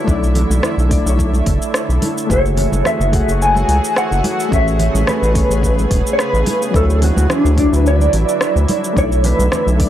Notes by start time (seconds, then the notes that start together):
Already playing: D3 E4
0.04 B1 A3 D4, kick
0.09 E4 D5, cabasa
0.23 cabasa
0.35 open hi-hat, low conga
0.50 B1, high conga, cabasa
0.63 cross-stick, low conga, cabasa
0.78 B1, cabasa
0.89 A3 D4 E4 D5, kick, open hi-hat
1.02 B1 A3 D4
1.07 E4 C#5, cabasa
1.19 kick, cabasa
1.34 high conga, cabasa
1.46 F#1, kick, open hi-hat
1.62 cabasa
1.74 cross-stick, cabasa
1.89 B1, cabasa
2.02 open hi-hat, high conga
2.18 cabasa
2.27 F#1 E3 A3 F#4 G#4, kick
2.31 G#4 C#5 E5, cabasa
2.45 cabasa
2.57 open hi-hat, low conga
2.72 F#1, high conga, cabasa
2.85 E5, cross-stick, low conga, cabasa
3.00 F#1, cabasa
3.12 A3 F#4 G#4 F#5, kick, open hi-hat
3.24 F#1 A3 F#4
3.29 G#4 C#5, cabasa
3.42 G#5, cabasa
3.56 high conga, cabasa
3.68 C#2, open hi-hat
3.84 cabasa
3.96 F#5, cross-stick, cabasa
4.11 F#1, cabasa
4.24 open hi-hat, high conga
4.40 cabasa
4.49 A1 C#3 A3 B3 C#4 G#4, kick
4.53 G#4 C#5 E5, cabasa
4.68 cabasa
4.79 open hi-hat, low conga
4.94 A1, high conga, cabasa
5.07 B4, cross-stick, low conga, cabasa
5.22 A1, cabasa
5.34 A3 C#4 G#4 C#5, kick, open hi-hat
5.47 A1 A3 C#4
5.51 G#4 B4, cabasa
5.63 kick, cabasa
5.79 high conga, cabasa
5.91 E1, kick, open hi-hat
6.07 cabasa
6.13 C#5
6.19 B4, cross-stick, cabasa
6.33 A1, cabasa
6.46 open hi-hat, high conga
6.62 cabasa
6.71 D2 D3 F#3 D4 E4, kick
6.75 E4 A4 C#5, cabasa
6.90 cabasa
7.02 F#4, open hi-hat, low conga
7.17 D2, high conga, cabasa
7.30 D4, cross-stick, low conga, cabasa
7.45 D2, cabasa
7.56 F#3 D4 E4 D5, kick, open hi-hat
7.69 D2 F#3 D4
7.73 E4 B4, cabasa
7.86 D5, cabasa
8.00 high conga, cabasa
8.13 A1, open hi-hat
8.29 cabasa
8.41 cross-stick, cabasa
8.56 D2, cabasa
8.69 open hi-hat, high conga
8.84 cabasa
8.93 B1 D3 A3 D4, kick
8.97 E4 C#5 D5, cabasa
9.12 cabasa
9.24 B4, open hi-hat, low conga
9.39 B1, high conga, cabasa
9.52 cross-stick, low conga, cabasa
9.67 B1, cabasa
9.78 A3 D4 E4 D5, kick, open hi-hat